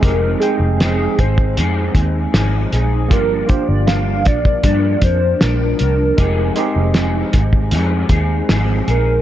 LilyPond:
<<
  \new Staff \with { instrumentName = "Soft synth lead" } { \time 4/4 \key f \dorian \tempo 4 = 78 bes'8 aes'4 c''8 r4. aes'8 | bes'8 c''16 d''16 f''8 d''8 d''8 c''8 bes'4~ | bes'4. r2 bes'8 | }
  \new Staff \with { instrumentName = "Tine electric piano" } { \time 4/4 \key f \dorian <aes c' ees' g'>8 <aes c' ees' g''>4. r2 | <bes d' f' g'>8 <bes d' f' g'>4. r2 | <aes c' ees' g'>8 <aes c' ees' g'>4. r2 | }
  \new Staff \with { instrumentName = "Clean electric guitar" } { \time 4/4 \key f \dorian <f c' ees' aes'>8 <c' ees' aes'>8 <f c' ees' aes'>8 <c' ees' aes'>8 <f c' ees' aes'>8 <c' ees' aes'>8 <f c' ees' aes'>8 <c' ees' aes'>8 | <g, f bes d'>8 <f bes d'>8 <g, f bes d'>8 <f bes d'>8 <g, f bes d'>8 <f bes d'>8 <g, f bes d'>8 <f bes d'>8 | <f c' ees' aes'>8 <c' ees' aes'>8 <f c' ees' aes'>8 <c' ees' aes'>8 <f c' ees' aes'>8 <c' ees' aes'>8 <f c' ees' aes'>8 <c' ees' aes'>8 | }
  \new Staff \with { instrumentName = "Fingered electric bass" } { \clef bass \time 4/4 \key f \dorian f,,8 r16 f,,8. aes,,8 f,8 ees,8 aes,,8 bes,,8 | g,,8 r16 g,,8. bes,,8 g,8 f,8 bes,,8 c,8 | f,,8 r16 f,,8. aes,,8 f,8 ees,8 aes,,8 bes,,8 | }
  \new DrumStaff \with { instrumentName = "Drums" } \drummode { \time 4/4 <hh bd>8 hh8 <hh sn>8 <hh bd>16 bd16 hh8 <hh bd>8 <hh sn>8 hh8 | <hh bd>8 <hh bd>8 <hh sn>8 <hh bd sn>16 bd16 <hh bd>8 <hh bd>8 <hh sn>8 hh8 | <hh bd>8 hh8 <hh sn>8 <hh bd sn>16 bd16 hh8 <hh bd>8 <hh sn>8 hh8 | }
>>